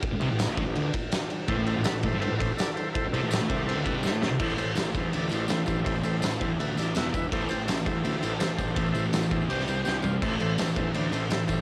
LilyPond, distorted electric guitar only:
\new Staff \with { instrumentName = "Distorted electric guitar" } { \clef bass \time 4/4 \key a \minor \tempo 4 = 165 r8 c16 a,8 a,8 a,16 d16 r4. r16 | a,16 a,8 a,16 a,8 a,16 g,16 r16 a,8 r4 r16 | r8 c16 a,8 a,16 c8. d16 c8 g16 a16 a,16 c16 | <a, e a>8 <a, e>8 <a, e>8 <a, e>8 <a, e>8 <a, e>8 <a, e>8 <a, e>8 |
<a, e>8 <a, e>8 <a, e>8 <a, e>8 <a, e>8 <a, e>8 <e, b, e>8 <e, b,>8 | <a, e a>8 <a, e>8 <a, e>8 <a, e>8 <a, e>8 <a, e>8 <a, e>8 <a, e>8 | <a, e>8 <a, e>8 <a, e>8 <a, e>8 <c g c'>8 <c g>8 <c g c'>8 <c g>8 | <a, e a>8 <a, e>8 <a, e>8 <a, e>8 <a, e>8 <a, e>8 <a, e>8 <a, e>8 | }